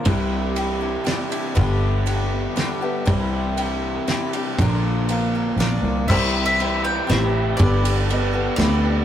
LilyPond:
<<
  \new Staff \with { instrumentName = "Mandolin" } { \time 3/4 \key c \major \tempo 4 = 119 r2. | r2. | r2. | r2 d''4 |
e''8. e''8. g''8 e''4 | d''2 d''4 | }
  \new Staff \with { instrumentName = "Upright piano" } { \time 3/4 \key c \major r2. | r2. | r2. | r2. |
<e' b' c''>8 r8 <e' b' c''>8 r8 <e' b' c''>8 r8 | <g' a' b'>8 r8 <g' a' d''>8 r8 <g' a' b'>8 r8 | }
  \new Staff \with { instrumentName = "Steel-string acoustic guitar" } { \time 3/4 \key c \major <c g d' e' g'>4 <g d' e' g'>8 <d' e' g'>8 <g d' e' g'>8 <d' e' g'>8 | <g, d a b d' g'>4 <a b d' g'>4 <a b d' g'>8 <a b d' g'>8 | <c g d' e' g'>4 <g d' e' g'>4 <g d' e' g'>8 <d' e' g'>8 | <bes, d f bes d' bes'>4 <f bes d' bes'>8 <f bes d' bes'>8 <f bes d' bes'>4 |
<c g e' g'>4 <g e' g'>4 <g e' g'>4 | <g, d g b d' a'>4 <g b d' a'>8 <g b d' a'>8 <g b d' a'>4 | }
  \new Staff \with { instrumentName = "Overdriven electric guitar" } { \time 3/4 \key c \major <c e g c' g'>2. | <g, d g b d' g'>2. | <c e g c' e'>2. | <bes, d bes d' f'>2. |
<c e g c' g'>8 <g c' g'>8 <e g c' g'>4 <c e g c' g'>8 <g c' g'>8 | <g, d g b d' g'>8 <g b d' g'>8 <g b d' g'>4 <g, d g b d' g'>8 <g b d' g'>8 | }
  \new Staff \with { instrumentName = "Fingered electric bass" } { \clef bass \time 3/4 \key c \major c,2 r4 | g,,2 r4 | c,2 r4 | bes,,2 bes,,8 c,8 |
c,2 a,,4 | g,,2 d,4 | }
  \new DrumStaff \with { instrumentName = "Drums" } \drummode { \time 3/4 <bd cymr>4 cymr4 <cymr sn>8 cymr8 | <bd cymr>4 cymr4 <cymr sn>4 | <bd cymr>4 cymr4 <cymr sn>8 cymr8 | <bd cymr>4 cymr4 <cymr sn>4 |
<cymc bd>4 cymr4 <cymr sn>4 | <bd cymr>8 cymr8 cymr4 <cymr sn>4 | }
>>